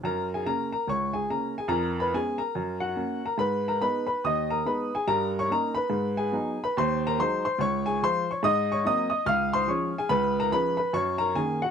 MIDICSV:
0, 0, Header, 1, 2, 480
1, 0, Start_track
1, 0, Key_signature, 6, "major"
1, 0, Tempo, 419287
1, 42, Time_signature, 4, 2, 24, 8
1, 7727, Key_signature, -5, "major"
1, 13402, End_track
2, 0, Start_track
2, 0, Title_t, "Upright piano"
2, 0, Program_c, 0, 0
2, 41, Note_on_c, 0, 42, 78
2, 56, Note_on_c, 0, 82, 85
2, 67, Note_on_c, 0, 70, 71
2, 272, Control_c, 0, 64, 127
2, 354, Note_off_c, 0, 70, 0
2, 370, Note_off_c, 0, 82, 0
2, 392, Note_on_c, 0, 80, 74
2, 398, Note_on_c, 0, 68, 61
2, 451, Note_off_c, 0, 42, 0
2, 521, Note_on_c, 0, 49, 43
2, 529, Note_on_c, 0, 61, 42
2, 531, Note_off_c, 0, 68, 0
2, 531, Note_on_c, 0, 82, 87
2, 532, Note_on_c, 0, 58, 41
2, 538, Note_off_c, 0, 80, 0
2, 540, Control_c, 0, 64, 0
2, 543, Note_on_c, 0, 70, 63
2, 786, Note_off_c, 0, 49, 0
2, 793, Note_off_c, 0, 61, 0
2, 794, Note_off_c, 0, 58, 0
2, 805, Note_off_c, 0, 70, 0
2, 812, Note_off_c, 0, 82, 0
2, 830, Note_on_c, 0, 82, 71
2, 842, Note_on_c, 0, 70, 55
2, 1000, Note_on_c, 0, 37, 65
2, 1006, Note_off_c, 0, 70, 0
2, 1012, Note_off_c, 0, 82, 0
2, 1022, Note_on_c, 0, 85, 91
2, 1024, Note_on_c, 0, 73, 67
2, 1286, Note_off_c, 0, 73, 0
2, 1299, Note_on_c, 0, 80, 74
2, 1306, Note_off_c, 0, 85, 0
2, 1310, Note_on_c, 0, 68, 62
2, 1411, Note_off_c, 0, 37, 0
2, 1480, Note_off_c, 0, 68, 0
2, 1487, Note_off_c, 0, 80, 0
2, 1490, Note_on_c, 0, 58, 43
2, 1491, Note_on_c, 0, 49, 39
2, 1492, Note_on_c, 0, 61, 46
2, 1493, Note_on_c, 0, 82, 73
2, 1508, Note_on_c, 0, 70, 48
2, 1754, Note_off_c, 0, 49, 0
2, 1754, Note_off_c, 0, 58, 0
2, 1755, Note_off_c, 0, 61, 0
2, 1796, Note_off_c, 0, 70, 0
2, 1808, Note_on_c, 0, 80, 78
2, 1810, Note_off_c, 0, 82, 0
2, 1828, Note_on_c, 0, 68, 57
2, 1924, Note_on_c, 0, 41, 81
2, 1931, Note_on_c, 0, 82, 93
2, 1958, Note_on_c, 0, 70, 71
2, 1967, Note_off_c, 0, 68, 0
2, 1968, Note_off_c, 0, 80, 0
2, 2209, Control_c, 0, 64, 127
2, 2260, Note_off_c, 0, 70, 0
2, 2269, Note_off_c, 0, 82, 0
2, 2290, Note_on_c, 0, 83, 79
2, 2306, Note_on_c, 0, 71, 68
2, 2351, Note_off_c, 0, 41, 0
2, 2441, Note_on_c, 0, 56, 36
2, 2447, Note_off_c, 0, 71, 0
2, 2448, Note_on_c, 0, 59, 41
2, 2449, Note_off_c, 0, 83, 0
2, 2454, Note_on_c, 0, 80, 89
2, 2456, Control_c, 0, 64, 0
2, 2459, Note_on_c, 0, 61, 42
2, 2469, Note_on_c, 0, 68, 65
2, 2707, Note_off_c, 0, 56, 0
2, 2713, Note_off_c, 0, 59, 0
2, 2720, Note_off_c, 0, 61, 0
2, 2727, Note_on_c, 0, 82, 79
2, 2730, Note_off_c, 0, 68, 0
2, 2736, Note_on_c, 0, 70, 60
2, 2742, Note_off_c, 0, 80, 0
2, 2922, Note_on_c, 0, 42, 72
2, 3128, Control_c, 0, 64, 127
2, 3184, Note_off_c, 0, 70, 0
2, 3210, Note_on_c, 0, 78, 80
2, 3213, Note_off_c, 0, 82, 0
2, 3220, Note_on_c, 0, 66, 59
2, 3333, Note_off_c, 0, 42, 0
2, 3394, Note_on_c, 0, 58, 44
2, 3395, Note_on_c, 0, 61, 48
2, 3421, Control_c, 0, 64, 0
2, 3662, Note_off_c, 0, 58, 0
2, 3663, Note_off_c, 0, 61, 0
2, 3694, Note_off_c, 0, 66, 0
2, 3724, Note_off_c, 0, 78, 0
2, 3727, Note_on_c, 0, 82, 68
2, 3740, Note_on_c, 0, 70, 57
2, 3866, Note_on_c, 0, 44, 76
2, 3879, Note_on_c, 0, 83, 92
2, 3884, Note_off_c, 0, 70, 0
2, 3888, Note_off_c, 0, 82, 0
2, 3893, Note_on_c, 0, 71, 72
2, 4082, Control_c, 0, 64, 127
2, 4189, Note_off_c, 0, 71, 0
2, 4204, Note_off_c, 0, 83, 0
2, 4214, Note_on_c, 0, 82, 76
2, 4219, Note_on_c, 0, 70, 65
2, 4284, Note_off_c, 0, 44, 0
2, 4359, Note_on_c, 0, 56, 43
2, 4363, Note_off_c, 0, 70, 0
2, 4366, Note_on_c, 0, 63, 50
2, 4368, Note_on_c, 0, 83, 94
2, 4372, Note_off_c, 0, 82, 0
2, 4373, Note_on_c, 0, 59, 39
2, 4385, Control_c, 0, 64, 0
2, 4385, Note_on_c, 0, 71, 72
2, 4626, Note_off_c, 0, 56, 0
2, 4631, Note_off_c, 0, 63, 0
2, 4636, Note_off_c, 0, 59, 0
2, 4638, Note_off_c, 0, 83, 0
2, 4644, Note_off_c, 0, 71, 0
2, 4655, Note_on_c, 0, 83, 83
2, 4661, Note_on_c, 0, 71, 63
2, 4836, Note_off_c, 0, 71, 0
2, 4846, Note_off_c, 0, 83, 0
2, 4856, Note_on_c, 0, 39, 66
2, 4862, Note_on_c, 0, 87, 94
2, 4884, Note_on_c, 0, 75, 76
2, 5138, Note_off_c, 0, 75, 0
2, 5146, Note_off_c, 0, 87, 0
2, 5156, Note_on_c, 0, 82, 79
2, 5166, Note_on_c, 0, 70, 67
2, 5261, Note_off_c, 0, 39, 0
2, 5325, Note_on_c, 0, 56, 43
2, 5330, Note_off_c, 0, 70, 0
2, 5333, Note_on_c, 0, 59, 42
2, 5337, Note_off_c, 0, 82, 0
2, 5341, Note_on_c, 0, 83, 76
2, 5345, Note_on_c, 0, 63, 48
2, 5348, Note_on_c, 0, 71, 59
2, 5590, Note_off_c, 0, 56, 0
2, 5596, Note_off_c, 0, 59, 0
2, 5604, Note_off_c, 0, 63, 0
2, 5637, Note_off_c, 0, 71, 0
2, 5655, Note_off_c, 0, 83, 0
2, 5664, Note_on_c, 0, 80, 84
2, 5676, Note_on_c, 0, 68, 65
2, 5810, Note_on_c, 0, 82, 104
2, 5811, Note_on_c, 0, 43, 80
2, 5812, Note_off_c, 0, 68, 0
2, 5817, Note_off_c, 0, 80, 0
2, 5822, Note_on_c, 0, 70, 77
2, 6033, Control_c, 0, 64, 127
2, 6114, Note_off_c, 0, 70, 0
2, 6129, Note_off_c, 0, 82, 0
2, 6171, Note_on_c, 0, 85, 96
2, 6180, Note_on_c, 0, 73, 69
2, 6218, Note_off_c, 0, 43, 0
2, 6299, Control_c, 0, 64, 0
2, 6302, Note_on_c, 0, 58, 43
2, 6304, Note_on_c, 0, 61, 42
2, 6305, Note_off_c, 0, 73, 0
2, 6307, Note_on_c, 0, 63, 46
2, 6310, Note_off_c, 0, 85, 0
2, 6318, Note_on_c, 0, 70, 68
2, 6319, Note_on_c, 0, 82, 89
2, 6562, Note_off_c, 0, 58, 0
2, 6563, Note_off_c, 0, 61, 0
2, 6565, Note_off_c, 0, 63, 0
2, 6575, Note_off_c, 0, 70, 0
2, 6577, Note_on_c, 0, 83, 88
2, 6595, Note_off_c, 0, 82, 0
2, 6607, Note_on_c, 0, 71, 65
2, 6751, Note_on_c, 0, 44, 84
2, 6996, Control_c, 0, 64, 127
2, 7040, Note_off_c, 0, 71, 0
2, 7058, Note_off_c, 0, 83, 0
2, 7068, Note_on_c, 0, 80, 82
2, 7089, Note_on_c, 0, 68, 68
2, 7166, Note_off_c, 0, 44, 0
2, 7237, Note_on_c, 0, 59, 45
2, 7242, Note_on_c, 0, 54, 45
2, 7252, Note_on_c, 0, 63, 58
2, 7257, Control_c, 0, 64, 0
2, 7503, Note_off_c, 0, 59, 0
2, 7507, Note_off_c, 0, 54, 0
2, 7515, Note_off_c, 0, 63, 0
2, 7548, Note_off_c, 0, 68, 0
2, 7572, Note_off_c, 0, 80, 0
2, 7598, Note_on_c, 0, 83, 89
2, 7610, Note_on_c, 0, 71, 60
2, 7739, Note_off_c, 0, 71, 0
2, 7742, Note_off_c, 0, 83, 0
2, 7751, Note_on_c, 0, 39, 89
2, 7763, Note_on_c, 0, 84, 98
2, 7778, Note_on_c, 0, 72, 79
2, 7937, Control_c, 0, 64, 127
2, 8052, Note_off_c, 0, 72, 0
2, 8065, Note_off_c, 0, 84, 0
2, 8091, Note_on_c, 0, 82, 100
2, 8097, Note_on_c, 0, 70, 72
2, 8148, Note_off_c, 0, 39, 0
2, 8215, Control_c, 0, 64, 0
2, 8222, Note_off_c, 0, 70, 0
2, 8228, Note_off_c, 0, 82, 0
2, 8230, Note_on_c, 0, 54, 56
2, 8238, Note_on_c, 0, 56, 56
2, 8241, Note_on_c, 0, 84, 99
2, 8250, Note_on_c, 0, 63, 55
2, 8264, Note_on_c, 0, 72, 80
2, 8487, Note_off_c, 0, 54, 0
2, 8493, Note_off_c, 0, 56, 0
2, 8501, Note_off_c, 0, 63, 0
2, 8508, Note_off_c, 0, 72, 0
2, 8512, Note_off_c, 0, 84, 0
2, 8529, Note_on_c, 0, 84, 85
2, 8536, Note_on_c, 0, 72, 67
2, 8683, Note_on_c, 0, 37, 81
2, 8693, Note_off_c, 0, 72, 0
2, 8702, Note_off_c, 0, 84, 0
2, 8710, Note_on_c, 0, 73, 90
2, 8710, Note_on_c, 0, 85, 105
2, 8920, Control_c, 0, 64, 127
2, 8969, Note_off_c, 0, 73, 0
2, 8989, Note_off_c, 0, 85, 0
2, 8996, Note_on_c, 0, 80, 93
2, 9007, Note_on_c, 0, 68, 70
2, 9092, Note_off_c, 0, 37, 0
2, 9168, Note_off_c, 0, 68, 0
2, 9175, Note_off_c, 0, 80, 0
2, 9177, Control_c, 0, 64, 0
2, 9183, Note_on_c, 0, 56, 47
2, 9190, Note_on_c, 0, 65, 55
2, 9191, Note_on_c, 0, 53, 50
2, 9200, Note_on_c, 0, 84, 108
2, 9209, Note_on_c, 0, 72, 76
2, 9442, Note_off_c, 0, 56, 0
2, 9447, Note_off_c, 0, 65, 0
2, 9448, Note_off_c, 0, 53, 0
2, 9486, Note_off_c, 0, 72, 0
2, 9502, Note_off_c, 0, 84, 0
2, 9511, Note_on_c, 0, 85, 79
2, 9527, Note_on_c, 0, 73, 61
2, 9649, Note_on_c, 0, 44, 93
2, 9656, Note_off_c, 0, 73, 0
2, 9658, Note_off_c, 0, 85, 0
2, 9663, Note_on_c, 0, 87, 117
2, 9671, Note_on_c, 0, 75, 90
2, 9877, Control_c, 0, 64, 127
2, 9956, Note_off_c, 0, 75, 0
2, 9973, Note_off_c, 0, 87, 0
2, 9980, Note_on_c, 0, 85, 97
2, 9994, Note_on_c, 0, 73, 70
2, 10054, Note_off_c, 0, 44, 0
2, 10128, Note_on_c, 0, 54, 50
2, 10129, Note_off_c, 0, 73, 0
2, 10132, Note_off_c, 0, 85, 0
2, 10136, Control_c, 0, 64, 0
2, 10139, Note_on_c, 0, 58, 58
2, 10145, Note_on_c, 0, 60, 53
2, 10149, Note_on_c, 0, 75, 82
2, 10150, Note_on_c, 0, 87, 105
2, 10391, Note_off_c, 0, 54, 0
2, 10397, Note_off_c, 0, 87, 0
2, 10399, Note_off_c, 0, 58, 0
2, 10403, Note_off_c, 0, 60, 0
2, 10408, Note_off_c, 0, 75, 0
2, 10415, Note_on_c, 0, 87, 87
2, 10432, Note_on_c, 0, 75, 67
2, 10599, Note_off_c, 0, 75, 0
2, 10600, Note_on_c, 0, 37, 81
2, 10603, Note_off_c, 0, 87, 0
2, 10606, Note_on_c, 0, 89, 112
2, 10631, Note_on_c, 0, 77, 92
2, 10810, Control_c, 0, 64, 127
2, 10888, Note_off_c, 0, 77, 0
2, 10895, Note_off_c, 0, 89, 0
2, 10915, Note_on_c, 0, 84, 101
2, 10929, Note_on_c, 0, 72, 77
2, 11009, Note_off_c, 0, 37, 0
2, 11073, Note_on_c, 0, 53, 48
2, 11079, Note_on_c, 0, 56, 49
2, 11086, Note_on_c, 0, 85, 83
2, 11088, Note_off_c, 0, 72, 0
2, 11089, Note_on_c, 0, 61, 54
2, 11093, Note_off_c, 0, 84, 0
2, 11093, Control_c, 0, 64, 0
2, 11101, Note_on_c, 0, 73, 64
2, 11340, Note_off_c, 0, 53, 0
2, 11344, Note_off_c, 0, 56, 0
2, 11351, Note_off_c, 0, 61, 0
2, 11390, Note_off_c, 0, 73, 0
2, 11404, Note_off_c, 0, 85, 0
2, 11430, Note_on_c, 0, 80, 89
2, 11433, Note_on_c, 0, 68, 68
2, 11555, Note_on_c, 0, 83, 113
2, 11558, Note_on_c, 0, 37, 89
2, 11568, Note_off_c, 0, 68, 0
2, 11573, Note_on_c, 0, 71, 83
2, 11576, Note_off_c, 0, 80, 0
2, 11802, Control_c, 0, 64, 127
2, 11865, Note_off_c, 0, 71, 0
2, 11878, Note_off_c, 0, 83, 0
2, 11903, Note_on_c, 0, 82, 93
2, 11913, Note_on_c, 0, 70, 73
2, 11967, Note_off_c, 0, 37, 0
2, 12037, Note_on_c, 0, 53, 45
2, 12047, Note_off_c, 0, 70, 0
2, 12047, Note_on_c, 0, 61, 58
2, 12048, Note_on_c, 0, 83, 105
2, 12049, Note_on_c, 0, 56, 48
2, 12051, Control_c, 0, 64, 0
2, 12052, Note_off_c, 0, 82, 0
2, 12068, Note_on_c, 0, 71, 78
2, 12302, Note_off_c, 0, 53, 0
2, 12310, Note_off_c, 0, 56, 0
2, 12310, Note_off_c, 0, 61, 0
2, 12314, Note_off_c, 0, 83, 0
2, 12326, Note_off_c, 0, 71, 0
2, 12331, Note_on_c, 0, 83, 87
2, 12354, Note_on_c, 0, 71, 72
2, 12516, Note_on_c, 0, 42, 79
2, 12520, Note_off_c, 0, 71, 0
2, 12521, Note_off_c, 0, 83, 0
2, 12521, Note_on_c, 0, 85, 112
2, 12545, Note_on_c, 0, 73, 74
2, 12749, Control_c, 0, 64, 127
2, 12802, Note_on_c, 0, 82, 92
2, 12805, Note_off_c, 0, 73, 0
2, 12812, Note_off_c, 0, 85, 0
2, 12829, Note_on_c, 0, 70, 72
2, 12926, Note_off_c, 0, 42, 0
2, 12990, Note_on_c, 0, 51, 47
2, 12996, Note_off_c, 0, 82, 0
2, 12997, Note_off_c, 0, 70, 0
2, 12999, Note_on_c, 0, 80, 94
2, 13001, Note_on_c, 0, 58, 52
2, 13003, Note_on_c, 0, 61, 51
2, 13016, Note_on_c, 0, 68, 66
2, 13018, Control_c, 0, 64, 0
2, 13257, Note_off_c, 0, 51, 0
2, 13265, Note_off_c, 0, 58, 0
2, 13266, Note_off_c, 0, 61, 0
2, 13280, Note_off_c, 0, 68, 0
2, 13291, Note_off_c, 0, 80, 0
2, 13304, Note_on_c, 0, 78, 83
2, 13329, Note_on_c, 0, 66, 59
2, 13402, Note_off_c, 0, 66, 0
2, 13402, Note_off_c, 0, 78, 0
2, 13402, End_track
0, 0, End_of_file